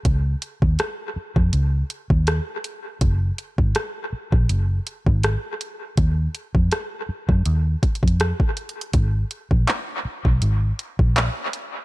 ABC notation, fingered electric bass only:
X:1
M:4/4
L:1/16
Q:"Swing 16ths" 1/4=81
K:Ebm
V:1 name="Fingered electric bass" clef=bass
D,,2 z E,, z3 F,, D,,2 z E,,2 z3 | G,,,2 z A,,, z3 B,,, G,,,2 z A,,,2 z3 | E,,2 z F,, z3 G,, E,,2 z F,,2 z3 | A,,,2 z B,,, z3 C,, A,,,2 z B,,,2 z3 |]